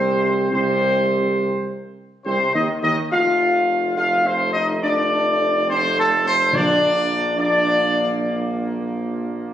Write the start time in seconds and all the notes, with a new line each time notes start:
Already playing: C2 C3 C4 C5
0.52 C2 C3 C4 C5
2.24 C2 C3 C4 C5
2.53 D#2 D#3 D#4 D#5
2.82 D#2 D#3 D#4 D#5
3.11 F1 F3 A3 F4 F5
3.96 F3 A3 F4 F5
4.25 C4 C5
4.52 D#4 D#5
4.82 F3 A3 D4 D5
5.67 F3 A3 C4 C5
5.97 A3 A4
6.24 C4 C5
6.53 A#1 A#2 F3 A#3 D4 D5
7.37 F3 A#3 D4 D5